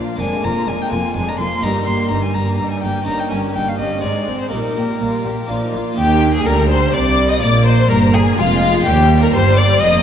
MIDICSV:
0, 0, Header, 1, 8, 480
1, 0, Start_track
1, 0, Key_signature, -3, "major"
1, 0, Tempo, 480384
1, 200, Time_signature, 3, 2, 24, 8
1, 10018, End_track
2, 0, Start_track
2, 0, Title_t, "Violin"
2, 0, Program_c, 0, 40
2, 199, Note_on_c, 0, 80, 75
2, 438, Note_on_c, 0, 82, 74
2, 453, Note_off_c, 0, 80, 0
2, 679, Note_on_c, 0, 80, 71
2, 694, Note_off_c, 0, 82, 0
2, 811, Note_on_c, 0, 79, 74
2, 826, Note_off_c, 0, 80, 0
2, 910, Note_off_c, 0, 79, 0
2, 916, Note_on_c, 0, 80, 73
2, 1150, Note_off_c, 0, 80, 0
2, 1159, Note_on_c, 0, 80, 79
2, 1282, Note_on_c, 0, 82, 66
2, 1297, Note_off_c, 0, 80, 0
2, 1386, Note_off_c, 0, 82, 0
2, 1392, Note_on_c, 0, 84, 70
2, 1626, Note_on_c, 0, 82, 75
2, 1641, Note_off_c, 0, 84, 0
2, 1861, Note_off_c, 0, 82, 0
2, 1867, Note_on_c, 0, 84, 71
2, 2100, Note_off_c, 0, 84, 0
2, 2106, Note_on_c, 0, 82, 68
2, 2226, Note_off_c, 0, 82, 0
2, 2237, Note_on_c, 0, 80, 68
2, 2338, Note_on_c, 0, 82, 74
2, 2353, Note_off_c, 0, 80, 0
2, 2570, Note_off_c, 0, 82, 0
2, 2576, Note_on_c, 0, 82, 68
2, 2701, Note_off_c, 0, 82, 0
2, 2709, Note_on_c, 0, 80, 59
2, 2820, Note_off_c, 0, 80, 0
2, 2826, Note_on_c, 0, 79, 67
2, 3057, Note_off_c, 0, 79, 0
2, 3063, Note_on_c, 0, 82, 80
2, 3187, Note_on_c, 0, 79, 60
2, 3202, Note_off_c, 0, 82, 0
2, 3288, Note_off_c, 0, 79, 0
2, 3294, Note_on_c, 0, 80, 68
2, 3374, Note_off_c, 0, 80, 0
2, 3541, Note_on_c, 0, 79, 67
2, 3681, Note_on_c, 0, 77, 58
2, 3696, Note_off_c, 0, 79, 0
2, 3775, Note_off_c, 0, 77, 0
2, 3781, Note_on_c, 0, 75, 70
2, 4023, Note_off_c, 0, 75, 0
2, 4031, Note_on_c, 0, 74, 63
2, 4389, Note_off_c, 0, 74, 0
2, 4402, Note_on_c, 0, 72, 51
2, 4504, Note_off_c, 0, 72, 0
2, 4510, Note_on_c, 0, 70, 67
2, 5704, Note_off_c, 0, 70, 0
2, 5976, Note_on_c, 0, 67, 91
2, 6311, Note_off_c, 0, 67, 0
2, 6330, Note_on_c, 0, 68, 79
2, 6451, Note_on_c, 0, 70, 84
2, 6466, Note_off_c, 0, 68, 0
2, 6679, Note_off_c, 0, 70, 0
2, 6685, Note_on_c, 0, 72, 89
2, 6926, Note_on_c, 0, 74, 89
2, 6941, Note_off_c, 0, 72, 0
2, 7283, Note_on_c, 0, 75, 81
2, 7298, Note_off_c, 0, 74, 0
2, 7399, Note_off_c, 0, 75, 0
2, 7405, Note_on_c, 0, 74, 97
2, 7485, Note_off_c, 0, 74, 0
2, 7648, Note_on_c, 0, 72, 86
2, 7878, Note_off_c, 0, 72, 0
2, 7884, Note_on_c, 0, 70, 86
2, 7964, Note_off_c, 0, 70, 0
2, 8130, Note_on_c, 0, 68, 92
2, 8210, Note_off_c, 0, 68, 0
2, 8368, Note_on_c, 0, 65, 84
2, 8835, Note_off_c, 0, 65, 0
2, 8841, Note_on_c, 0, 67, 103
2, 9197, Note_off_c, 0, 67, 0
2, 9215, Note_on_c, 0, 70, 85
2, 9261, Note_off_c, 0, 70, 0
2, 9324, Note_on_c, 0, 72, 104
2, 9560, Note_on_c, 0, 74, 105
2, 9575, Note_off_c, 0, 72, 0
2, 9805, Note_on_c, 0, 75, 107
2, 9820, Note_off_c, 0, 74, 0
2, 10018, Note_off_c, 0, 75, 0
2, 10018, End_track
3, 0, Start_track
3, 0, Title_t, "Violin section"
3, 0, Program_c, 1, 48
3, 0, Note_on_c, 1, 70, 46
3, 199, Note_off_c, 1, 70, 0
3, 203, Note_on_c, 1, 68, 49
3, 423, Note_off_c, 1, 68, 0
3, 440, Note_on_c, 1, 70, 43
3, 677, Note_off_c, 1, 70, 0
3, 686, Note_on_c, 1, 68, 48
3, 920, Note_off_c, 1, 68, 0
3, 928, Note_on_c, 1, 70, 50
3, 1157, Note_on_c, 1, 68, 46
3, 1161, Note_off_c, 1, 70, 0
3, 1378, Note_off_c, 1, 68, 0
3, 1402, Note_on_c, 1, 70, 51
3, 1637, Note_off_c, 1, 70, 0
3, 1641, Note_on_c, 1, 67, 51
3, 1860, Note_off_c, 1, 67, 0
3, 1879, Note_on_c, 1, 70, 46
3, 2110, Note_on_c, 1, 67, 43
3, 2115, Note_off_c, 1, 70, 0
3, 2351, Note_off_c, 1, 67, 0
3, 2351, Note_on_c, 1, 70, 46
3, 2585, Note_on_c, 1, 67, 47
3, 2592, Note_off_c, 1, 70, 0
3, 2812, Note_off_c, 1, 67, 0
3, 2824, Note_on_c, 1, 70, 47
3, 3068, Note_off_c, 1, 70, 0
3, 3072, Note_on_c, 1, 67, 49
3, 3296, Note_off_c, 1, 67, 0
3, 3312, Note_on_c, 1, 70, 43
3, 3551, Note_on_c, 1, 67, 40
3, 3552, Note_off_c, 1, 70, 0
3, 3792, Note_off_c, 1, 67, 0
3, 3795, Note_on_c, 1, 70, 44
3, 4021, Note_on_c, 1, 72, 41
3, 4035, Note_off_c, 1, 70, 0
3, 4253, Note_off_c, 1, 72, 0
3, 4275, Note_on_c, 1, 68, 41
3, 4519, Note_off_c, 1, 68, 0
3, 4522, Note_on_c, 1, 70, 37
3, 4747, Note_off_c, 1, 70, 0
3, 4758, Note_on_c, 1, 67, 37
3, 4996, Note_on_c, 1, 70, 38
3, 5003, Note_off_c, 1, 67, 0
3, 5243, Note_off_c, 1, 70, 0
3, 5247, Note_on_c, 1, 67, 40
3, 5490, Note_off_c, 1, 67, 0
3, 5491, Note_on_c, 1, 70, 42
3, 5716, Note_off_c, 1, 70, 0
3, 5736, Note_on_c, 1, 65, 40
3, 5974, Note_on_c, 1, 79, 105
3, 5977, Note_off_c, 1, 65, 0
3, 6310, Note_off_c, 1, 79, 0
3, 6359, Note_on_c, 1, 80, 90
3, 6465, Note_off_c, 1, 80, 0
3, 6468, Note_on_c, 1, 82, 97
3, 6697, Note_off_c, 1, 82, 0
3, 6705, Note_on_c, 1, 84, 107
3, 6935, Note_off_c, 1, 84, 0
3, 6938, Note_on_c, 1, 86, 102
3, 7289, Note_off_c, 1, 86, 0
3, 7306, Note_on_c, 1, 87, 101
3, 7418, Note_off_c, 1, 87, 0
3, 7426, Note_on_c, 1, 86, 112
3, 7654, Note_off_c, 1, 86, 0
3, 7659, Note_on_c, 1, 84, 97
3, 7890, Note_off_c, 1, 84, 0
3, 7907, Note_on_c, 1, 82, 111
3, 8139, Note_off_c, 1, 82, 0
3, 8152, Note_on_c, 1, 80, 104
3, 8376, Note_off_c, 1, 80, 0
3, 8386, Note_on_c, 1, 77, 109
3, 8857, Note_off_c, 1, 77, 0
3, 8858, Note_on_c, 1, 79, 99
3, 9206, Note_off_c, 1, 79, 0
3, 9231, Note_on_c, 1, 82, 99
3, 9330, Note_on_c, 1, 84, 125
3, 9339, Note_off_c, 1, 82, 0
3, 9565, Note_on_c, 1, 86, 108
3, 9567, Note_off_c, 1, 84, 0
3, 9799, Note_off_c, 1, 86, 0
3, 9805, Note_on_c, 1, 87, 118
3, 10018, Note_off_c, 1, 87, 0
3, 10018, End_track
4, 0, Start_track
4, 0, Title_t, "Violin section"
4, 0, Program_c, 2, 48
4, 0, Note_on_c, 2, 65, 46
4, 198, Note_off_c, 2, 65, 0
4, 198, Note_on_c, 2, 62, 51
4, 420, Note_off_c, 2, 62, 0
4, 435, Note_on_c, 2, 65, 46
4, 674, Note_on_c, 2, 62, 43
4, 675, Note_off_c, 2, 65, 0
4, 914, Note_off_c, 2, 62, 0
4, 916, Note_on_c, 2, 65, 49
4, 1155, Note_off_c, 2, 65, 0
4, 1163, Note_on_c, 2, 62, 45
4, 1382, Note_off_c, 2, 62, 0
4, 1402, Note_on_c, 2, 65, 41
4, 1632, Note_on_c, 2, 63, 49
4, 1637, Note_off_c, 2, 65, 0
4, 1855, Note_off_c, 2, 63, 0
4, 1867, Note_on_c, 2, 67, 42
4, 2101, Note_on_c, 2, 63, 40
4, 2109, Note_off_c, 2, 67, 0
4, 2344, Note_on_c, 2, 67, 40
4, 2346, Note_off_c, 2, 63, 0
4, 2588, Note_off_c, 2, 67, 0
4, 2589, Note_on_c, 2, 63, 50
4, 2814, Note_off_c, 2, 63, 0
4, 2831, Note_on_c, 2, 67, 45
4, 3072, Note_off_c, 2, 67, 0
4, 3076, Note_on_c, 2, 63, 46
4, 3297, Note_off_c, 2, 63, 0
4, 3308, Note_on_c, 2, 67, 46
4, 3550, Note_off_c, 2, 67, 0
4, 3553, Note_on_c, 2, 63, 40
4, 3789, Note_on_c, 2, 67, 38
4, 3793, Note_off_c, 2, 63, 0
4, 4032, Note_off_c, 2, 67, 0
4, 4038, Note_on_c, 2, 63, 42
4, 4262, Note_off_c, 2, 63, 0
4, 4278, Note_on_c, 2, 60, 40
4, 4520, Note_off_c, 2, 60, 0
4, 4526, Note_on_c, 2, 63, 43
4, 4750, Note_off_c, 2, 63, 0
4, 4779, Note_on_c, 2, 67, 38
4, 5014, Note_off_c, 2, 67, 0
4, 5028, Note_on_c, 2, 65, 52
4, 5243, Note_off_c, 2, 65, 0
4, 5259, Note_on_c, 2, 67, 45
4, 5496, Note_off_c, 2, 67, 0
4, 5496, Note_on_c, 2, 65, 53
4, 5543, Note_off_c, 2, 65, 0
4, 5634, Note_on_c, 2, 63, 46
4, 5733, Note_on_c, 2, 65, 55
4, 5742, Note_off_c, 2, 63, 0
4, 5975, Note_off_c, 2, 65, 0
4, 5983, Note_on_c, 2, 67, 85
4, 6315, Note_off_c, 2, 67, 0
4, 6346, Note_on_c, 2, 68, 77
4, 6459, Note_off_c, 2, 68, 0
4, 6473, Note_on_c, 2, 70, 84
4, 6704, Note_off_c, 2, 70, 0
4, 6705, Note_on_c, 2, 72, 81
4, 6936, Note_off_c, 2, 72, 0
4, 6944, Note_on_c, 2, 74, 91
4, 7292, Note_off_c, 2, 74, 0
4, 7300, Note_on_c, 2, 75, 76
4, 7417, Note_off_c, 2, 75, 0
4, 7419, Note_on_c, 2, 74, 101
4, 7650, Note_on_c, 2, 72, 88
4, 7651, Note_off_c, 2, 74, 0
4, 7886, Note_off_c, 2, 72, 0
4, 7895, Note_on_c, 2, 70, 79
4, 8128, Note_off_c, 2, 70, 0
4, 8137, Note_on_c, 2, 68, 89
4, 8368, Note_on_c, 2, 65, 102
4, 8374, Note_off_c, 2, 68, 0
4, 8848, Note_off_c, 2, 65, 0
4, 8855, Note_on_c, 2, 67, 94
4, 9208, Note_on_c, 2, 70, 83
4, 9211, Note_off_c, 2, 67, 0
4, 9328, Note_off_c, 2, 70, 0
4, 9334, Note_on_c, 2, 72, 88
4, 9567, Note_on_c, 2, 74, 92
4, 9569, Note_off_c, 2, 72, 0
4, 9801, Note_off_c, 2, 74, 0
4, 9806, Note_on_c, 2, 75, 104
4, 10018, Note_off_c, 2, 75, 0
4, 10018, End_track
5, 0, Start_track
5, 0, Title_t, "Viola section"
5, 0, Program_c, 3, 48
5, 0, Note_on_c, 3, 58, 46
5, 197, Note_on_c, 3, 56, 48
5, 198, Note_off_c, 3, 58, 0
5, 420, Note_off_c, 3, 56, 0
5, 435, Note_on_c, 3, 58, 45
5, 674, Note_on_c, 3, 56, 47
5, 675, Note_off_c, 3, 58, 0
5, 914, Note_off_c, 3, 56, 0
5, 920, Note_on_c, 3, 58, 44
5, 1157, Note_off_c, 3, 58, 0
5, 1159, Note_on_c, 3, 56, 52
5, 1379, Note_off_c, 3, 56, 0
5, 1410, Note_on_c, 3, 58, 47
5, 1638, Note_on_c, 3, 55, 43
5, 1641, Note_off_c, 3, 58, 0
5, 1858, Note_off_c, 3, 55, 0
5, 1871, Note_on_c, 3, 58, 43
5, 2111, Note_off_c, 3, 58, 0
5, 2120, Note_on_c, 3, 55, 44
5, 2356, Note_off_c, 3, 55, 0
5, 2360, Note_on_c, 3, 58, 44
5, 2595, Note_on_c, 3, 55, 47
5, 2596, Note_off_c, 3, 58, 0
5, 2817, Note_off_c, 3, 55, 0
5, 2831, Note_on_c, 3, 58, 46
5, 3056, Note_off_c, 3, 58, 0
5, 3068, Note_on_c, 3, 58, 44
5, 3293, Note_off_c, 3, 58, 0
5, 3307, Note_on_c, 3, 61, 44
5, 3546, Note_on_c, 3, 58, 43
5, 3550, Note_off_c, 3, 61, 0
5, 3790, Note_off_c, 3, 58, 0
5, 3794, Note_on_c, 3, 61, 41
5, 4034, Note_on_c, 3, 56, 45
5, 4035, Note_off_c, 3, 61, 0
5, 4259, Note_off_c, 3, 56, 0
5, 4277, Note_on_c, 3, 60, 42
5, 4514, Note_on_c, 3, 55, 40
5, 4520, Note_off_c, 3, 60, 0
5, 4743, Note_off_c, 3, 55, 0
5, 4750, Note_on_c, 3, 58, 39
5, 4996, Note_on_c, 3, 55, 37
5, 4999, Note_off_c, 3, 58, 0
5, 5240, Note_on_c, 3, 58, 35
5, 5243, Note_off_c, 3, 55, 0
5, 5481, Note_on_c, 3, 53, 44
5, 5486, Note_off_c, 3, 58, 0
5, 5711, Note_off_c, 3, 53, 0
5, 5731, Note_on_c, 3, 58, 44
5, 5957, Note_off_c, 3, 58, 0
5, 5969, Note_on_c, 3, 58, 67
5, 6419, Note_off_c, 3, 58, 0
5, 6463, Note_on_c, 3, 55, 74
5, 7419, Note_off_c, 3, 55, 0
5, 7419, Note_on_c, 3, 58, 70
5, 7883, Note_off_c, 3, 58, 0
5, 7895, Note_on_c, 3, 58, 74
5, 8362, Note_off_c, 3, 58, 0
5, 8371, Note_on_c, 3, 56, 86
5, 8850, Note_off_c, 3, 56, 0
5, 8852, Note_on_c, 3, 55, 82
5, 9807, Note_off_c, 3, 55, 0
5, 9808, Note_on_c, 3, 58, 92
5, 10018, Note_off_c, 3, 58, 0
5, 10018, End_track
6, 0, Start_track
6, 0, Title_t, "Harpsichord"
6, 0, Program_c, 4, 6
6, 0, Note_on_c, 4, 46, 49
6, 0, Note_on_c, 4, 58, 36
6, 0, Note_on_c, 4, 62, 37
6, 0, Note_on_c, 4, 65, 40
6, 139, Note_off_c, 4, 58, 0
6, 147, Note_off_c, 4, 62, 0
6, 154, Note_on_c, 4, 58, 38
6, 155, Note_off_c, 4, 65, 0
6, 164, Note_on_c, 4, 62, 43
6, 175, Note_off_c, 4, 46, 0
6, 180, Note_on_c, 4, 70, 43
6, 199, Note_on_c, 4, 41, 43
6, 414, Note_off_c, 4, 41, 0
6, 434, Note_on_c, 4, 41, 47
6, 651, Note_off_c, 4, 41, 0
6, 668, Note_on_c, 4, 41, 44
6, 887, Note_off_c, 4, 41, 0
6, 911, Note_on_c, 4, 41, 49
6, 1128, Note_off_c, 4, 41, 0
6, 1153, Note_on_c, 4, 41, 46
6, 1369, Note_off_c, 4, 41, 0
6, 1397, Note_on_c, 4, 41, 45
6, 1570, Note_off_c, 4, 58, 0
6, 1575, Note_off_c, 4, 62, 0
6, 1583, Note_off_c, 4, 70, 0
6, 1593, Note_on_c, 4, 58, 40
6, 1606, Note_on_c, 4, 63, 42
6, 1611, Note_off_c, 4, 41, 0
6, 1625, Note_on_c, 4, 70, 43
6, 1637, Note_on_c, 4, 43, 48
6, 1850, Note_off_c, 4, 43, 0
6, 1871, Note_on_c, 4, 43, 47
6, 2087, Note_off_c, 4, 43, 0
6, 2117, Note_on_c, 4, 43, 38
6, 2331, Note_off_c, 4, 43, 0
6, 2354, Note_on_c, 4, 43, 50
6, 2569, Note_off_c, 4, 43, 0
6, 2595, Note_on_c, 4, 43, 50
6, 2810, Note_off_c, 4, 43, 0
6, 2842, Note_on_c, 4, 43, 43
6, 3012, Note_off_c, 4, 58, 0
6, 3019, Note_off_c, 4, 63, 0
6, 3028, Note_off_c, 4, 70, 0
6, 3031, Note_on_c, 4, 61, 43
6, 3047, Note_on_c, 4, 63, 41
6, 3053, Note_off_c, 4, 43, 0
6, 3060, Note_on_c, 4, 70, 42
6, 3074, Note_on_c, 4, 43, 46
6, 3289, Note_off_c, 4, 43, 0
6, 3322, Note_on_c, 4, 43, 44
6, 3534, Note_off_c, 4, 43, 0
6, 3558, Note_on_c, 4, 43, 41
6, 3772, Note_off_c, 4, 43, 0
6, 3801, Note_on_c, 4, 43, 48
6, 3984, Note_off_c, 4, 61, 0
6, 3988, Note_on_c, 4, 60, 41
6, 3992, Note_off_c, 4, 63, 0
6, 3999, Note_off_c, 4, 70, 0
6, 4003, Note_on_c, 4, 63, 37
6, 4015, Note_off_c, 4, 43, 0
6, 4019, Note_on_c, 4, 68, 38
6, 4034, Note_on_c, 4, 44, 41
6, 4252, Note_off_c, 4, 44, 0
6, 4280, Note_on_c, 4, 44, 40
6, 4481, Note_off_c, 4, 60, 0
6, 4482, Note_off_c, 4, 63, 0
6, 4482, Note_on_c, 4, 58, 36
6, 4494, Note_on_c, 4, 63, 37
6, 4497, Note_off_c, 4, 44, 0
6, 4497, Note_off_c, 4, 68, 0
6, 4511, Note_on_c, 4, 67, 34
6, 4527, Note_on_c, 4, 46, 39
6, 4743, Note_off_c, 4, 46, 0
6, 4764, Note_on_c, 4, 46, 37
6, 4982, Note_off_c, 4, 46, 0
6, 5009, Note_on_c, 4, 46, 36
6, 5226, Note_off_c, 4, 46, 0
6, 5256, Note_on_c, 4, 46, 43
6, 5439, Note_off_c, 4, 58, 0
6, 5448, Note_off_c, 4, 63, 0
6, 5451, Note_on_c, 4, 58, 36
6, 5457, Note_off_c, 4, 67, 0
6, 5467, Note_on_c, 4, 62, 36
6, 5470, Note_off_c, 4, 46, 0
6, 5481, Note_on_c, 4, 65, 35
6, 5499, Note_on_c, 4, 46, 45
6, 5713, Note_off_c, 4, 46, 0
6, 5736, Note_on_c, 4, 46, 39
6, 5922, Note_off_c, 4, 58, 0
6, 5934, Note_on_c, 4, 58, 62
6, 5946, Note_on_c, 4, 63, 61
6, 5949, Note_off_c, 4, 62, 0
6, 5953, Note_off_c, 4, 46, 0
6, 5956, Note_off_c, 4, 65, 0
6, 5964, Note_on_c, 4, 67, 59
6, 5978, Note_on_c, 4, 51, 67
6, 6417, Note_off_c, 4, 51, 0
6, 6420, Note_off_c, 4, 58, 0
6, 6459, Note_on_c, 4, 50, 58
6, 6897, Note_off_c, 4, 50, 0
6, 6935, Note_on_c, 4, 48, 70
6, 7360, Note_off_c, 4, 63, 0
6, 7369, Note_off_c, 4, 67, 0
6, 7370, Note_on_c, 4, 58, 64
6, 7375, Note_off_c, 4, 48, 0
6, 7383, Note_on_c, 4, 65, 65
6, 7401, Note_on_c, 4, 68, 59
6, 7414, Note_on_c, 4, 46, 70
6, 7852, Note_off_c, 4, 46, 0
6, 7886, Note_on_c, 4, 43, 65
6, 8328, Note_off_c, 4, 43, 0
6, 8375, Note_on_c, 4, 41, 70
6, 8788, Note_off_c, 4, 58, 0
6, 8794, Note_off_c, 4, 65, 0
6, 8803, Note_off_c, 4, 68, 0
6, 8812, Note_off_c, 4, 41, 0
6, 8813, Note_on_c, 4, 58, 63
6, 8831, Note_on_c, 4, 63, 65
6, 8845, Note_on_c, 4, 67, 64
6, 8862, Note_on_c, 4, 39, 74
6, 9294, Note_off_c, 4, 39, 0
6, 9338, Note_on_c, 4, 43, 67
6, 9758, Note_off_c, 4, 58, 0
6, 9770, Note_off_c, 4, 43, 0
6, 9810, Note_on_c, 4, 41, 71
6, 10018, Note_off_c, 4, 41, 0
6, 10018, Note_off_c, 4, 63, 0
6, 10018, Note_off_c, 4, 67, 0
6, 10018, End_track
7, 0, Start_track
7, 0, Title_t, "Cello section"
7, 0, Program_c, 5, 48
7, 209, Note_on_c, 5, 41, 56
7, 289, Note_off_c, 5, 41, 0
7, 445, Note_on_c, 5, 41, 48
7, 525, Note_off_c, 5, 41, 0
7, 678, Note_on_c, 5, 41, 54
7, 758, Note_off_c, 5, 41, 0
7, 920, Note_on_c, 5, 41, 50
7, 1000, Note_off_c, 5, 41, 0
7, 1163, Note_on_c, 5, 41, 57
7, 1243, Note_off_c, 5, 41, 0
7, 1398, Note_on_c, 5, 41, 51
7, 1478, Note_off_c, 5, 41, 0
7, 1640, Note_on_c, 5, 43, 62
7, 1720, Note_off_c, 5, 43, 0
7, 1882, Note_on_c, 5, 43, 48
7, 1962, Note_off_c, 5, 43, 0
7, 2119, Note_on_c, 5, 43, 55
7, 2199, Note_off_c, 5, 43, 0
7, 2361, Note_on_c, 5, 43, 51
7, 2440, Note_off_c, 5, 43, 0
7, 2594, Note_on_c, 5, 43, 57
7, 2674, Note_off_c, 5, 43, 0
7, 2839, Note_on_c, 5, 43, 47
7, 2918, Note_off_c, 5, 43, 0
7, 3078, Note_on_c, 5, 43, 51
7, 3158, Note_off_c, 5, 43, 0
7, 3320, Note_on_c, 5, 43, 45
7, 3400, Note_off_c, 5, 43, 0
7, 3562, Note_on_c, 5, 43, 51
7, 3642, Note_off_c, 5, 43, 0
7, 3799, Note_on_c, 5, 43, 46
7, 3879, Note_off_c, 5, 43, 0
7, 4043, Note_on_c, 5, 44, 53
7, 4123, Note_off_c, 5, 44, 0
7, 4282, Note_on_c, 5, 44, 42
7, 4362, Note_off_c, 5, 44, 0
7, 4528, Note_on_c, 5, 46, 54
7, 4608, Note_off_c, 5, 46, 0
7, 4772, Note_on_c, 5, 46, 45
7, 4852, Note_off_c, 5, 46, 0
7, 5013, Note_on_c, 5, 46, 49
7, 5093, Note_off_c, 5, 46, 0
7, 5251, Note_on_c, 5, 46, 43
7, 5331, Note_off_c, 5, 46, 0
7, 5492, Note_on_c, 5, 46, 43
7, 5572, Note_off_c, 5, 46, 0
7, 5737, Note_on_c, 5, 46, 44
7, 5817, Note_off_c, 5, 46, 0
7, 5982, Note_on_c, 5, 51, 84
7, 6426, Note_off_c, 5, 51, 0
7, 6463, Note_on_c, 5, 50, 75
7, 6930, Note_off_c, 5, 50, 0
7, 6943, Note_on_c, 5, 48, 84
7, 7409, Note_off_c, 5, 48, 0
7, 7419, Note_on_c, 5, 46, 80
7, 7885, Note_off_c, 5, 46, 0
7, 7899, Note_on_c, 5, 43, 81
7, 8365, Note_off_c, 5, 43, 0
7, 8373, Note_on_c, 5, 41, 90
7, 8841, Note_off_c, 5, 41, 0
7, 8852, Note_on_c, 5, 39, 90
7, 9319, Note_off_c, 5, 39, 0
7, 9327, Note_on_c, 5, 43, 87
7, 9795, Note_off_c, 5, 43, 0
7, 9808, Note_on_c, 5, 41, 95
7, 10018, Note_off_c, 5, 41, 0
7, 10018, End_track
8, 0, Start_track
8, 0, Title_t, "Double bass section"
8, 0, Program_c, 6, 48
8, 196, Note_on_c, 6, 29, 57
8, 276, Note_off_c, 6, 29, 0
8, 439, Note_on_c, 6, 29, 51
8, 518, Note_off_c, 6, 29, 0
8, 679, Note_on_c, 6, 29, 50
8, 759, Note_off_c, 6, 29, 0
8, 921, Note_on_c, 6, 29, 48
8, 1001, Note_off_c, 6, 29, 0
8, 1159, Note_on_c, 6, 29, 54
8, 1239, Note_off_c, 6, 29, 0
8, 1398, Note_on_c, 6, 29, 46
8, 1478, Note_off_c, 6, 29, 0
8, 1636, Note_on_c, 6, 31, 60
8, 1716, Note_off_c, 6, 31, 0
8, 1878, Note_on_c, 6, 31, 54
8, 1958, Note_off_c, 6, 31, 0
8, 2120, Note_on_c, 6, 31, 52
8, 2200, Note_off_c, 6, 31, 0
8, 2360, Note_on_c, 6, 31, 53
8, 2439, Note_off_c, 6, 31, 0
8, 2597, Note_on_c, 6, 31, 55
8, 2677, Note_off_c, 6, 31, 0
8, 2837, Note_on_c, 6, 31, 48
8, 2917, Note_off_c, 6, 31, 0
8, 3080, Note_on_c, 6, 31, 59
8, 3160, Note_off_c, 6, 31, 0
8, 3320, Note_on_c, 6, 31, 51
8, 3399, Note_off_c, 6, 31, 0
8, 3557, Note_on_c, 6, 31, 50
8, 3636, Note_off_c, 6, 31, 0
8, 3794, Note_on_c, 6, 31, 48
8, 3874, Note_off_c, 6, 31, 0
8, 4035, Note_on_c, 6, 32, 45
8, 4115, Note_off_c, 6, 32, 0
8, 4280, Note_on_c, 6, 32, 41
8, 4360, Note_off_c, 6, 32, 0
8, 4517, Note_on_c, 6, 34, 44
8, 4597, Note_off_c, 6, 34, 0
8, 4764, Note_on_c, 6, 34, 42
8, 4844, Note_off_c, 6, 34, 0
8, 5010, Note_on_c, 6, 34, 46
8, 5090, Note_off_c, 6, 34, 0
8, 5252, Note_on_c, 6, 34, 43
8, 5332, Note_off_c, 6, 34, 0
8, 5490, Note_on_c, 6, 34, 47
8, 5569, Note_off_c, 6, 34, 0
8, 5731, Note_on_c, 6, 34, 39
8, 5811, Note_off_c, 6, 34, 0
8, 5974, Note_on_c, 6, 39, 74
8, 6422, Note_off_c, 6, 39, 0
8, 6456, Note_on_c, 6, 38, 85
8, 6926, Note_off_c, 6, 38, 0
8, 6944, Note_on_c, 6, 36, 76
8, 7409, Note_off_c, 6, 36, 0
8, 7422, Note_on_c, 6, 34, 79
8, 7887, Note_off_c, 6, 34, 0
8, 7902, Note_on_c, 6, 31, 89
8, 8366, Note_off_c, 6, 31, 0
8, 8377, Note_on_c, 6, 29, 77
8, 8843, Note_off_c, 6, 29, 0
8, 8853, Note_on_c, 6, 39, 79
8, 9320, Note_off_c, 6, 39, 0
8, 9331, Note_on_c, 6, 31, 86
8, 9797, Note_off_c, 6, 31, 0
8, 9813, Note_on_c, 6, 29, 84
8, 10018, Note_off_c, 6, 29, 0
8, 10018, End_track
0, 0, End_of_file